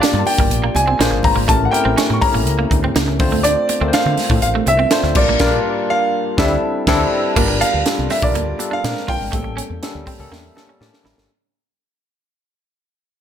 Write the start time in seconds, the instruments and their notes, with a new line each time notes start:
Already playing: tine electric piano A#3 D4 F4 G4 D5, grand piano F5
0.02 clean electric guitar D4, snare, closed hi-hat
0.13 fretless electric bass G2, muted clean electric guitar stroke, high conga
0.19 grand piano A5
0.26 grand piano G5, open hi-hat, muted conga, low conga
0.38 fretless electric bass G1, clean electric guitar A#3, kick
0.50 fretless electric bass A#1, closed hi-hat, muted conga, high conga
0.64 clean electric guitar A#3
0.75 fretless electric bass C2, grand piano G#5, muted clean electric guitar stroke, closed hi-hat, muted conga, high conga
0.87 clean electric guitar C4, high conga
0.99 fretless electric bass A#1, clean electric guitar A#3, tine electric piano A#3 D4 F4 G#4 C5, snare, closed hi-hat
1.11 fretless electric bass G#1, muted clean electric guitar stroke
1.23 fretless electric bass G1, grand piano A#5, kick, open hi-hat, high conga, low conga
1.36 fretless electric bass G#1, clean electric guitar A#3
1.48 fretless electric bass A1, clean electric guitar A3, tine electric piano A3 C#4 E4 G4 A#4, grand piano A5, kick, closed hi-hat, muted conga
1.65 grand piano F#5
1.71 tine electric piano A3 C4 E4 G4 A#4, grand piano G5, muted clean electric guitar stroke, closed hi-hat, high conga
1.78 tine electric piano C#4
1.85 fretless electric bass A1, clean electric guitar C4
1.97 clean electric guitar C#4, snare, closed hi-hat
2.10 fretless electric bass A2, grand piano C#6, muted clean electric guitar stroke, high conga
2.21 tine electric piano A3 C#4 E4 G4 A#4, grand piano A#5, kick, open hi-hat, muted conga, low conga
2.34 fretless electric bass A1, clean electric guitar A#3
2.46 fretless electric bass C#2, closed hi-hat, high conga
2.59 clean electric guitar A#3
2.71 fretless electric bass D2, muted clean electric guitar stroke, kick, closed hi-hat, high conga
2.84 clean electric guitar C4, high conga
2.95 fretless electric bass C#2, clean electric guitar A#3, snare, closed hi-hat
3.08 muted clean electric guitar stroke
3.19 fretless electric bass D2, tine electric piano A3 C4 D4 F4 C5, kick, open hi-hat, muted conga, high conga, low conga
3.32 clean electric guitar A3
3.43 clean electric guitar D4, grand piano D5, closed hi-hat
3.69 muted clean electric guitar stroke, closed hi-hat, muted conga, high conga
3.81 fretless electric bass D2, tine electric piano A3 C4 D4 F4 A#4, clean electric guitar C4
3.88 tine electric piano C5
3.93 clean electric guitar D4, grand piano F5, snare, closed hi-hat, muted conga
4.05 fretless electric bass D3, muted clean electric guitar stroke, high conga
4.17 snare, open hi-hat, low conga
4.30 fretless electric bass A2, clean electric guitar A3, kick
4.42 fretless electric bass A1, grand piano F5, closed hi-hat, high conga
4.55 clean electric guitar A3
4.66 fretless electric bass C2, grand piano E5, muted clean electric guitar stroke, closed hi-hat, high conga
4.79 clean electric guitar C4, high conga
4.91 tine electric piano A3 C4 D4 F4 C5, clean electric guitar A3, snare, closed hi-hat
5.03 fretless electric bass D2, muted clean electric guitar stroke, snare
5.15 fretless electric bass A#1, tine electric piano G3 A#3 C4 F4 A#4, grand piano D5, kick, crash, muted conga, high conga, low conga
5.22 tine electric piano D4
5.28 fretless electric bass A1, clean electric guitar A#3
5.39 fretless electric bass A#1, tine electric piano G3 A#3 F4 A#4, kick, snare, crash
5.46 tine electric piano D4
5.90 grand piano F5
6.37 fretless electric bass D2, tine electric piano G3 C4 D4 E4 A4, grand piano E5, kick, snare
6.87 fretless electric bass D2, tine electric piano G3 C4 D4 E4 A4, kick, snare, crash
7.36 fretless electric bass G1, tine electric piano G3 D4 F4 A#4, clean electric guitar A#3, kick, crash, muted conga
7.48 muted clean electric guitar stroke
7.61 clean electric guitar D4, grand piano F5, closed hi-hat, muted conga, high conga
7.74 fretless electric bass D2
7.86 tine electric piano G3 D4 F4 A4, snare, closed hi-hat
7.98 fretless electric bass C2, high conga
8.10 clean electric guitar C4, grand piano E5, snare, open hi-hat, muted conga, low conga
8.22 fretless electric bass A#1, tine electric piano G3 D4 F4 A#4, grand piano D5, kick
8.35 fretless electric bass D2, clean electric guitar A#3, closed hi-hat, muted conga, high conga
8.59 tine electric piano G3 D4 F4 A4, muted clean electric guitar stroke, closed hi-hat, muted conga, high conga
8.71 clean electric guitar D4, grand piano F5, high conga
8.84 fretless electric bass A#2, tine electric piano G#3 C4 D4 A#4, snare, closed hi-hat, muted conga
8.97 snare
9.08 fretless electric bass A#1, clean electric guitar F4, grand piano G5, kick, open hi-hat, muted conga, high conga, low conga
9.21 fretless electric bass G#1
9.32 fretless electric bass A1, tine electric piano G3 A#3 C4 A4, clean electric guitar A3, kick, closed hi-hat, muted conga
9.40 tine electric piano C#4
9.44 muted clean electric guitar stroke
9.57 clean electric guitar C#4, closed hi-hat, muted conga, high conga
9.70 fretless electric bass E2
9.82 tine electric piano G3 A#3 C#4 A4, snare, closed hi-hat
9.95 fretless electric bass D2, high conga
10.06 clean electric guitar C4, tine electric piano G5, kick, open hi-hat, low conga
10.19 fretless electric bass C#2, tine electric piano G3 A#3 C#4 A4
10.31 fretless electric bass E2, clean electric guitar A#3, tine electric piano E5, snare, high conga
10.55 tine electric piano G3 A#3 C#4 A4 A5, muted clean electric guitar stroke, snare, muted conga, high conga
10.67 clean electric guitar C#4, high conga
10.80 fretless electric bass A2, tine electric piano G3 A#3 C#4 G4 A5, snare, muted conga
10.94 snare
11.04 fretless electric bass A1, clean electric guitar E4, tine electric piano A#5, snare, muted conga, high conga, low conga
11.18 fretless electric bass G#1, snare